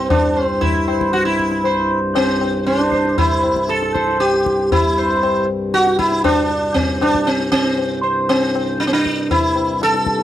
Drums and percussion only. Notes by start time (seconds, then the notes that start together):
0.10 tabla na, tabla ge
0.62 tabla tin, tabla ge
0.88 tabla na
1.01 tabla ke
1.14 tabla te
1.26 tabla te
1.39 tabla ke
1.51 tabla te
1.64 tabla tin
2.15 tabla na
2.41 tabla na
2.66 tabla te
2.79 tabla te
2.92 tabla ke
3.05 tabla te
3.18 tabla tin, tabla ge
3.43 tabla na
3.56 tabla ke
3.69 tabla te
3.82 tabla te
3.96 tabla ke
4.08 tabla te
4.21 tabla te
4.34 tabla te
4.46 tabla ke
4.59 tabla te
4.72 tabla tin, tabla ge
5.23 tabla na
5.74 tabla te
5.87 tabla te
5.99 tabla ke
6.12 tabla te
6.25 tabla na, tabla ge
6.50 tabla te
6.76 tabla tin, tabla ge
7.01 tabla na
7.15 tabla ke
7.27 tabla te
7.40 tabla te
7.53 tabla ke
7.65 tabla te
7.78 tabla tin
8.30 tabla na
8.55 tabla na
8.80 tabla te
8.93 tabla te
9.06 tabla ke
9.18 tabla te
9.31 tabla tin, tabla ge
9.56 tabla na
9.81 tabla te
9.94 tabla te
10.07 tabla ke
10.19 tabla te